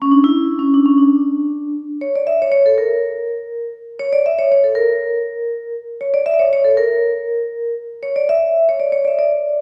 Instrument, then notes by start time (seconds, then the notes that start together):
vibraphone
0.02 C#4
0.11 D4
0.24 E4
0.59 C#4
0.74 D4
0.86 C#4
0.98 D4
2.01 C#5
2.16 D5
2.27 E5
2.42 C#5
2.52 C#5
2.66 A4
2.78 A#4
3.99 C#5
4.13 D5
4.26 E5
4.39 C#5
4.52 C#5
4.64 A4
4.75 A#4
6.01 C#5
6.14 D5
6.26 E5
6.34 D5
6.39 C#5
6.53 C#5
6.65 A4
6.77 A#4
8.03 C#5
8.16 D5
8.29 E5
8.69 C#5
8.80 D5
8.92 C#5
9.05 D5 E5
9.19 D5